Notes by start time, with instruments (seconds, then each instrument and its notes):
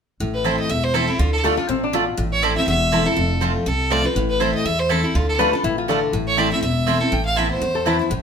0.20 upright bass A1, steel-string acoustic guitar A2
0.34 fiddle B4
0.44 steel-string acoustic guitar E3 A3 C4 E4, mandolin C4 E4 C5 A5, fiddle C5
0.59 fiddle D#5
0.69 upright bass E1, steel-string acoustic guitar E2, fiddle E5
0.84 fiddle C5
0.94 steel-string acoustic guitar E3 A3 C4 E4, mandolin C4 E4 C5 A5, fiddle A4
1.07 steel-string acoustic guitar C4 E4, fiddle E4
1.19 upright bass D2, steel-string acoustic guitar D3, fiddle F4
1.33 fiddle A4
1.44 steel-string acoustic guitar D3 A3 D4 F4, mandolin A3 F4 D5 A5, resonator guitar played with a steel bar A4
1.57 steel-string acoustic guitar D4 F4, resonator guitar played with a steel bar F4
1.69 upright bass A1, steel-string acoustic guitar C3, resonator guitar played with a steel bar C4
1.84 resonator guitar played with a steel bar D4
1.93 steel-string acoustic guitar B2, mandolin A3 F4 D5 A5, resonator guitar played with a steel bar F4
2.17 upright bass A1, steel-string acoustic guitar A2
2.32 fiddle C#5
2.42 steel-string acoustic guitar E3 A3 C4 E4, mandolin C4 E4 C5 A5, fiddle D5
2.56 steel-string acoustic guitar C4 E4, fiddle E5
2.67 upright bass E1, steel-string acoustic guitar E2, fiddle E5
2.92 steel-string acoustic guitar E3 A3 C4 E4, mandolin C4 E4 C5 A5
3.06 steel-string acoustic guitar C4 E4, fiddle A4
3.16 upright bass F1, steel-string acoustic guitar F2
3.41 steel-string acoustic guitar F3 A3 C4 F4, mandolin C4 F4 C5 A5
3.66 upright bass C2, steel-string acoustic guitar C3, fiddle A4
3.90 steel-string acoustic guitar F3 A3 C4 F4, mandolin C4 F4 C5 A5, fiddle D5
4.04 steel-string acoustic guitar C4 F4, fiddle B4
4.15 upright bass A1, steel-string acoustic guitar A2
4.29 fiddle B4
4.40 steel-string acoustic guitar E3 A3 C4 E4, mandolin C4 E4 C5 A5, fiddle C5
4.54 fiddle D#5
4.65 upright bass E2, steel-string acoustic guitar E2, fiddle E5
4.79 fiddle C5
4.89 steel-string acoustic guitar E3 A3 C4 E4, mandolin C4 E4 C5 A5, fiddle A4
5.03 steel-string acoustic guitar C4 E4, fiddle E4
5.15 upright bass D2, steel-string acoustic guitar D3, fiddle F4
5.29 fiddle A4
5.38 steel-string acoustic guitar D3 A3 D4 F4, mandolin A3 F4 D5 A5, resonator guitar played with a steel bar B4
5.53 steel-string acoustic guitar D4 F4, resonator guitar played with a steel bar A4
5.64 upright bass A1, steel-string acoustic guitar A2, resonator guitar played with a steel bar E4
5.78 resonator guitar played with a steel bar F4
5.88 steel-string acoustic guitar D3 A3 D4 F4, mandolin A3 F4 D5 A5, resonator guitar played with a steel bar A4
6.13 upright bass A1, steel-string acoustic guitar A2
6.27 fiddle C#5
6.37 steel-string acoustic guitar E3 A3 C4 E4, mandolin C4 E4 C5 A5, fiddle D5
6.52 steel-string acoustic guitar C4 E4, fiddle E5
6.62 upright bass E1, steel-string acoustic guitar E2, fiddle E5
6.86 steel-string acoustic guitar E3 A3 C4 E4, mandolin C4 E4 C5 A5
7.00 steel-string acoustic guitar C4 E4, fiddle A4
7.12 upright bass A1, steel-string acoustic guitar A2, fiddle G5
7.25 fiddle F5
7.36 steel-string acoustic guitar E3 B3 C4 E4, mandolin C4 E4 B4 A5, fiddle E5
7.50 fiddle C5
7.61 upright bass E2, steel-string acoustic guitar E2
7.75 resonator guitar played with a steel bar A4
7.85 steel-string acoustic guitar E3 B3 C4 E4, mandolin C4 E4 B4 A5, resonator guitar played with a steel bar E4
7.99 steel-string acoustic guitar B3 E4
8.10 upright bass A1, steel-string acoustic guitar A2